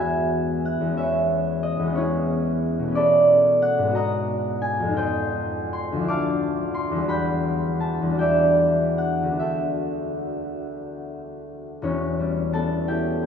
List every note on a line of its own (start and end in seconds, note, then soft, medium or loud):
0.00 0.80 E2 soft
0.00 0.84 G#3 soft
0.00 0.88 B3 soft
0.00 0.97 F#4 soft
0.00 1.96 G#4 medium
0.00 0.97 B4 medium
0.00 0.96 E5 medium
0.00 2.98 G#5 medium
0.65 1.00 F#5 medium
0.81 1.78 E2 soft
0.81 1.82 G#3 soft
0.89 1.86 B3 soft
0.93 1.90 C#4 soft
0.97 2.96 B4 medium
0.97 1.94 C#5 medium
0.97 2.99 E5 medium
1.63 1.88 D#5 medium
1.79 2.90 E2 medium
1.79 2.92 G#3 soft
1.88 2.86 B3 soft
1.88 2.90 C#4 soft
1.88 2.01 D#5 medium
1.95 2.99 E4 medium
1.95 2.99 G#4 medium
1.95 3.97 C#5 medium
2.79 3.89 B2 medium
2.79 3.91 A3 soft
2.88 3.86 B3 soft
2.88 3.95 C#4 soft
2.95 3.98 A4 medium
2.95 5.00 B4 medium
2.95 3.97 D5 medium
3.62 3.95 F#5 medium
3.78 4.91 G#2 medium
3.83 4.83 G#3 soft
3.87 4.96 B3 soft
3.91 4.98 F#4 medium
3.91 5.00 A#5 medium
3.96 4.97 D#5 medium
3.96 5.00 F#5 medium
4.62 6.10 G#5 medium
4.80 6.02 F2 medium
4.84 6.04 G#3 soft
4.89 6.06 D#4 soft
4.93 7.10 F4 soft
4.93 6.10 G5 medium
4.97 7.12 C5 medium
4.97 6.11 D#5 medium
5.73 6.73 C6 loud
5.92 7.04 D2 medium
5.92 7.06 F3 medium
6.00 6.99 D4 soft
6.04 9.94 E4 soft
6.08 7.13 F5 medium
6.08 7.13 A5 medium
6.08 9.98 D6 loud
6.74 7.12 C6 medium
6.92 8.01 E2 medium
6.96 8.05 G3 soft
6.96 8.09 D4 soft
7.04 8.13 F#4 soft
7.09 8.97 F#5 medium
7.09 8.18 G5 medium
7.09 9.43 B5 medium
7.80 8.46 A5 medium
8.02 9.34 E2 medium
8.06 9.37 G3 soft
8.10 9.30 D4 soft
8.10 9.34 F#4 soft
8.19 11.86 D5 medium
8.19 9.38 E5 medium
8.19 9.43 G5 medium
8.98 11.86 F#5 medium
9.23 11.77 D2 soft
9.23 11.79 A3 soft
9.31 11.82 D4 soft
9.31 11.83 F#4 soft
9.39 11.86 A4 medium
9.39 13.26 E5 medium
11.82 13.26 E1 medium
11.82 13.26 E2 medium
11.82 13.26 C#4 medium
11.82 13.26 C#5 medium
12.20 13.26 G3 soft
12.53 13.21 B3 medium
12.53 13.26 A4 medium
12.53 13.12 A5 medium
12.88 13.26 E4 medium
12.88 13.26 G4 medium
12.88 13.26 G5 medium
13.23 13.26 B3 soft